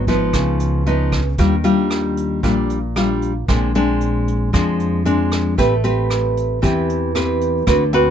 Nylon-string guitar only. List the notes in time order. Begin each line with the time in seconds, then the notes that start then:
Already playing: G#2
0.08 F3 B3 D#4
0.35 C#3
0.86 F3 B3 D#4
1.38 D#3 G3 D4 F4
1.64 G3 D4 F4
2.43 A#2 G3 D4 F4
2.96 G3 D4 F4
3.48 A#2 G#3 C4 D4
3.75 G#3 C4 D4
4.53 F3 G#3 C4 D4
5.05 G#3 C4 D4
5.58 A3 C4 G4 B4
5.84 C4 G4 B4
6.62 E3 C4 G4 B4
7.15 C4 G4 B4
7.67 D3 C4 F#4 B4
7.93 C4 F#4 B4